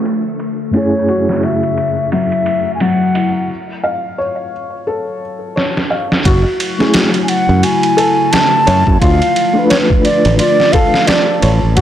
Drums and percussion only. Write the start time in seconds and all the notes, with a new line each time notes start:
0.05 ride
0.40 ride
0.74 ride
1.08 ride
1.29 snare
1.43 ride
1.63 ride
1.77 ride
2.12 ride
2.32 ride
2.46 ride
2.80 ride
3.15 ride
5.57 snare
5.77 snare
6.12 snare
6.25 kick, ride
6.60 ride
6.80 snare
6.94 snare, ride
7.14 ride
7.28 ride
7.63 ride
7.83 ride
7.98 ride
8.33 snare, ride
8.67 ride
8.87 kick
9.01 kick, ride
9.22 ride
9.36 ride
9.70 snare, ride
9.90 kick
10.05 ride
10.25 ride
10.39 ride
10.60 snare
10.73 kick, ride
10.94 snare
11.07 snare, ride
11.42 ride
11.77 kick, ride